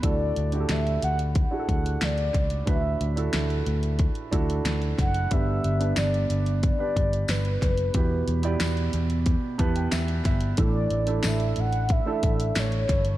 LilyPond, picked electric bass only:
\new Staff \with { instrumentName = "Picked electric bass" } { \clef bass \time 4/4 \key d \major \tempo 4 = 91 d,8 d,8 d,8 d,8. r16 d,8 d,8 cis,8 | d,8 d,8 d,8 d,8. r16 d,8 d,8 fis,,8 | g,,8 g,,8 g,,8 g,,8. r16 g,,8 g,,8 fis,,8 | e,8 e,8 e,8 e,8. r16 e,8 e,8 g,,8 |
a,,8 a,,8 a,,8 a,,8. r16 a,,8 a,,8 g,,8 | }